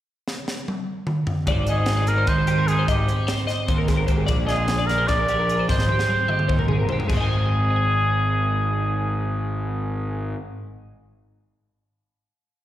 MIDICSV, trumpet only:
0, 0, Header, 1, 2, 480
1, 0, Start_track
1, 0, Tempo, 401338
1, 81, Time_signature, 7, 3, 24, 8
1, 15127, End_track
2, 0, Start_track
2, 0, Title_t, "Trumpet"
2, 0, Program_c, 0, 56
2, 2021, Note_on_c, 0, 68, 75
2, 2488, Note_on_c, 0, 70, 80
2, 2506, Note_off_c, 0, 68, 0
2, 2731, Note_on_c, 0, 72, 93
2, 2749, Note_off_c, 0, 70, 0
2, 3199, Note_on_c, 0, 68, 84
2, 3217, Note_off_c, 0, 72, 0
2, 3446, Note_off_c, 0, 68, 0
2, 3462, Note_on_c, 0, 67, 64
2, 3960, Note_off_c, 0, 67, 0
2, 5347, Note_on_c, 0, 68, 78
2, 5821, Note_on_c, 0, 70, 88
2, 5839, Note_off_c, 0, 68, 0
2, 6070, Note_on_c, 0, 74, 99
2, 6088, Note_off_c, 0, 70, 0
2, 6798, Note_off_c, 0, 74, 0
2, 6803, Note_on_c, 0, 72, 85
2, 8193, Note_off_c, 0, 72, 0
2, 8477, Note_on_c, 0, 68, 76
2, 12348, Note_off_c, 0, 68, 0
2, 15127, End_track
0, 0, End_of_file